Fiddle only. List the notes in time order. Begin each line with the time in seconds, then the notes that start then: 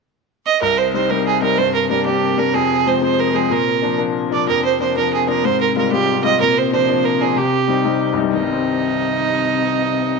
0.46 D#5
0.62 A#4
0.78 C5
0.93 C5
1.10 A#4
1.27 G#4
1.43 A#4
1.58 C5
1.74 A#4
1.90 A#4
2.06 G4
2.38 A#4
2.55 G#4
2.88 C5
3.04 C5
3.20 A#4
3.36 G#4
3.52 A#4
4.33 D5
4.49 A#4
4.65 C5
4.81 C5
4.97 A#4
5.14 G#4
5.29 A#4
5.45 C5
5.61 A#4
5.77 A#4
5.92 G4
6.24 D#5
6.41 A#4
6.58 C5
6.73 C5
7.05 A#4
7.22 G#4
7.37 G4
8.33 D#4